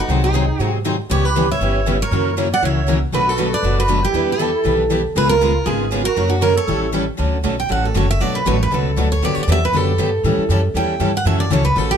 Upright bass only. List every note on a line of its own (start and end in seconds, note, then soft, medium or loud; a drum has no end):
0.08 0.49 C2 medium
0.59 1.00 G#2 medium
1.10 1.50 C#2 medium
1.60 2.01 G1 medium
2.11 2.52 F#2 medium
2.62 3.03 C#2 medium
3.12 3.53 B1 medium
3.63 4.03 F#1 medium
4.13 4.54 E2 medium
4.65 5.05 B1 medium
5.16 5.56 C#2 medium
5.66 6.07 G#1 medium
6.17 6.58 F#2 medium
6.67 7.08 A1 medium
7.19 7.43 D2 medium
7.44 7.69 B1 medium
7.70 7.94 A1 medium
7.95 8.20 F#1 medium
8.20 8.45 B1 medium
8.46 8.70 A1 medium
8.72 8.96 C#2 medium
8.97 9.21 D2 medium
9.22 9.35 G2 medium
9.36 muted upright bass stroke soft
9.47 9.72 E2 medium
9.73 9.97 F#2 medium
9.98 10.23 G2 medium
10.24 10.37 A2 medium
10.38 muted upright bass stroke soft
10.49 10.74 F#2 medium
10.74 10.99 E2 medium
11.00 11.25 G2 medium
11.25 11.50 F#2 medium
11.50 11.75 C#2 medium
11.76 11.97 A1 medium